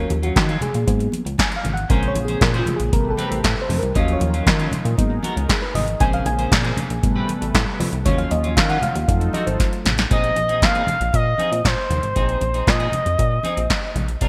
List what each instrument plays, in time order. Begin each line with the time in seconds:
Already playing: fm electric piano F#3 C#4 F4 A#4
0.10 analog synth bass D#2, muted clean electric guitar stroke, closed hi-hat, muted conga, high conga
0.23 clean electric guitar F#3 C#4 F4, fm electric piano F#4, closed hi-hat
0.36 analog synth bass D#3, kick, snare, clap, closed hi-hat, muted conga, high conga
0.49 clean electric guitar F#3 C#4 F4, closed hi-hat
0.61 fm electric piano G#4, muted clean electric guitar stroke, closed hi-hat, high conga, low conga
0.74 analog synth bass A#2, muted clean electric guitar stroke, closed hi-hat
0.87 analog synth bass G#2, fm electric piano F#3 A#3 B3, muted clean electric guitar stroke, kick, closed hi-hat
1.00 muted clean electric guitar stroke, closed hi-hat
1.12 closed hi-hat, high conga
1.25 analog synth bass C#2, muted clean electric guitar stroke, closed hi-hat
1.38 fm electric piano G#5, muted clean electric guitar stroke, kick, snare, clap, closed hi-hat, muted conga, high conga
1.51 muted clean electric guitar stroke, closed hi-hat
1.56 fm electric piano F5
1.64 analog synth bass G#1, closed hi-hat, high conga, low conga
1.74 fm electric piano F#5, muted clean electric guitar stroke, closed hi-hat
1.89 analog synth bass A#1, fm electric piano C#3 G#3 C4 A#4, analog synth pad C#3 A#3 G#4, clean electric guitar C#4 G#4 C5, kick, closed hi-hat, muted conga
2.03 closed hi-hat
2.08 fm electric piano C#5
2.15 analog synth bass A#1, muted clean electric guitar stroke, closed hi-hat, high conga
2.25 fm electric piano G#4, clean electric guitar G#4 C5, closed hi-hat
2.29 clean electric guitar C#4
2.41 analog synth bass A#2, fm electric piano A#4, muted clean electric guitar stroke, kick, snare, clap, closed hi-hat, muted conga, high conga
2.53 clean electric guitar C#4 G#4 C5, closed hi-hat
2.59 fm electric piano F4
2.66 muted clean electric guitar stroke, closed hi-hat, muted conga, high conga, low conga
2.76 analog synth bass A#1, fm electric piano G#4, muted clean electric guitar stroke, closed hi-hat
2.92 analog synth bass A1, fm electric piano C3 G3 B3 A#4, analog synth pad A3 G4 A4 B4, muted clean electric guitar stroke, kick, closed hi-hat
3.05 muted clean electric guitar stroke
3.10 fm electric piano A4
3.17 clean electric guitar C4 G4 B4, closed hi-hat, muted conga, high conga
3.28 analog synth bass A1, fm electric piano A#4, muted clean electric guitar stroke
3.32 closed hi-hat
3.43 analog synth bass A2, fm electric piano A4, muted clean electric guitar stroke, kick, snare, clap, closed hi-hat
3.56 muted clean electric guitar stroke
3.62 fm electric piano C5
3.69 analog synth bass F2, open hi-hat, high conga, low conga
3.78 analog synth bass C2, fm electric piano A#4, muted clean electric guitar stroke
3.83 closed hi-hat
3.95 analog synth bass D#2, analog synth pad D#3 C#4 D#4 F4, fm electric piano F3 F#3 C#4 D#5, clean electric guitar F#3 C#4 F4, kick, closed hi-hat
4.08 closed hi-hat
4.13 fm electric piano C#5
4.20 analog synth bass D#2, muted clean electric guitar stroke, closed hi-hat, muted conga, high conga
4.30 clean electric guitar F4, fm electric piano A#4, closed hi-hat
4.34 clean electric guitar F#3 C#4
4.46 analog synth bass D#3, muted clean electric guitar stroke, kick, snare, clap, closed hi-hat, muted conga, high conga
4.59 clean electric guitar F#3 C#4 F4, closed hi-hat
4.72 muted clean electric guitar stroke, closed hi-hat, high conga, low conga
4.85 analog synth bass A#2, muted clean electric guitar stroke, closed hi-hat
4.97 analog synth bass G#2, fm electric piano F#3 A#3 B3, analog synth pad G#3 G#4 A#4, muted clean electric guitar stroke, kick, closed hi-hat, muted conga
5.10 muted clean electric guitar stroke
5.23 clean electric guitar B3 F#4 A#4, closed hi-hat, high conga
5.36 analog synth bass C#2, muted clean electric guitar stroke, closed hi-hat
5.49 fm electric piano G#4, kick, snare, clap, closed hi-hat, muted conga
5.61 fm electric piano B4, muted clean electric guitar stroke
5.75 analog synth bass G#1, fm electric piano D#5, open hi-hat, high conga, low conga
5.87 muted clean electric guitar stroke, closed hi-hat
6.00 analog synth bass A#1, fm electric piano C#3 G#3 C4 G#5, analog synth pad C#3 A#3 G#4, clean electric guitar C#4 G#4 C5, kick, closed hi-hat, muted conga
6.13 fm electric piano F5, closed hi-hat
6.25 analog synth bass A#1, fm electric piano G#5, muted clean electric guitar stroke, closed hi-hat, muted conga, high conga
6.39 clean electric guitar C#4 G#4 C5, closed hi-hat
6.52 analog synth bass A#2, muted clean electric guitar stroke, kick, snare, clap, closed hi-hat, muted conga, high conga
6.64 clean electric guitar C#4 G#4 C5, closed hi-hat
6.77 muted clean electric guitar stroke, closed hi-hat, high conga, low conga
6.90 analog synth bass A#1, muted clean electric guitar stroke, closed hi-hat
7.03 analog synth bass A1, fm electric piano C3 G3 B3, analog synth pad G3 A3 A4 B4, muted clean electric guitar stroke, kick, closed hi-hat
7.16 clean electric guitar C4 G4 B4
7.28 muted clean electric guitar stroke, closed hi-hat, high conga
7.41 analog synth bass A1, muted clean electric guitar stroke, closed hi-hat
7.54 analog synth bass A2, muted clean electric guitar stroke, kick, snare, clap, closed hi-hat
7.67 muted clean electric guitar stroke
7.80 analog synth bass F2, open hi-hat, high conga, low conga
7.93 analog synth bass C2, muted clean electric guitar stroke, closed hi-hat
8.05 analog synth bass D#2, analog synth pad D#3 C#4 F4, fm electric piano F3 F#3 C#4 C#5, clean electric guitar F#3 C#4 F4, kick, closed hi-hat, muted conga, low conga
8.18 fm electric piano F5, closed hi-hat
8.31 analog synth bass D#2, fm electric piano D#5, muted clean electric guitar stroke, closed hi-hat, muted conga, high conga
8.44 clean electric guitar F#3 C#4 F4, closed hi-hat
8.57 analog synth bass D#3, fm electric piano F5, muted clean electric guitar stroke, kick, snare, clap, closed hi-hat, high conga
8.69 clean electric guitar F#3 C#4 F4, fm electric piano F#5, closed hi-hat
8.82 fm electric piano F5, muted clean electric guitar stroke, closed hi-hat, high conga, low conga
8.95 analog synth bass D#2, muted clean electric guitar stroke, closed hi-hat
9.08 analog synth bass F2, fm electric piano F#3 A3 D#4, analog synth pad D#4 F4 A4, muted clean electric guitar stroke, kick, closed hi-hat, muted conga
9.21 muted clean electric guitar stroke, closed hi-hat
9.33 clean electric guitar A3 D#4 F#4, fm electric piano D#5, closed hi-hat, muted conga, high conga
9.46 analog synth bass G#1, fm electric piano C5, muted clean electric guitar stroke, closed hi-hat
9.59 muted clean electric guitar stroke, kick, snare, closed hi-hat
9.72 muted clean electric guitar stroke, closed hi-hat
9.85 analog synth bass A1, snare, closed hi-hat, high conga, low conga
9.98 muted clean electric guitar stroke, snare, closed hi-hat
10.10 analog synth bass A#1, clean electric guitar C4 D#4 G#4, analog synth lead D#5, kick, closed hi-hat, muted conga
10.24 closed hi-hat
10.36 analog synth bass A#1, muted clean electric guitar stroke, closed hi-hat, high conga
10.49 clean electric guitar C4 D#4 G#4, closed hi-hat
10.62 analog synth bass A#2, analog synth lead F5, kick, snare, clap, closed hi-hat, muted conga, high conga
10.74 clean electric guitar C4 D#4 G#4, closed hi-hat
10.87 muted clean electric guitar stroke, closed hi-hat, muted conga, high conga, low conga
11.00 analog synth bass A#1, muted clean electric guitar stroke, closed hi-hat
11.13 analog synth bass A#2, analog synth lead D#5, muted clean electric guitar stroke, kick, closed hi-hat, muted conga
11.26 muted clean electric guitar stroke
11.38 clean electric guitar C4 D#4 G#4, closed hi-hat, high conga
11.52 analog synth bass A#2, muted clean electric guitar stroke, closed hi-hat
11.64 analog synth bass A#2, analog synth lead C5, muted clean electric guitar stroke, kick, snare, clap, closed hi-hat
11.77 muted clean electric guitar stroke
11.90 analog synth bass D#2, closed hi-hat, high conga, low conga
12.03 analog synth bass G#1, muted clean electric guitar stroke, closed hi-hat
12.15 analog synth bass A#1, clean electric guitar C4 D#4 G#4, kick, closed hi-hat
12.29 closed hi-hat
12.41 analog synth bass A#1, muted clean electric guitar stroke, closed hi-hat, muted conga, high conga
12.54 clean electric guitar C4 D#4 G#4, closed hi-hat
12.67 analog synth bass A#2, analog synth lead D#5, muted clean electric guitar stroke, kick, snare, clap, closed hi-hat, high conga
12.79 clean electric guitar C4 D#4 G#4, closed hi-hat
12.92 muted clean electric guitar stroke, closed hi-hat, high conga, low conga
13.06 analog synth bass F2, muted clean electric guitar stroke, closed hi-hat
13.18 analog synth bass A#2, muted clean electric guitar stroke, kick, closed hi-hat, muted conga
13.31 muted clean electric guitar stroke
13.43 clean electric guitar C4 D#4 G#4, closed hi-hat, muted conga, high conga
13.57 analog synth bass A#1, muted clean electric guitar stroke, closed hi-hat
13.70 muted clean electric guitar stroke, kick, snare, clap, closed hi-hat
13.83 muted clean electric guitar stroke
13.96 analog synth bass A#1, closed hi-hat, high conga, low conga
14.08 muted clean electric guitar stroke, closed hi-hat
14.21 analog synth bass C2, clean electric guitar D4 F4 A#4, kick, closed hi-hat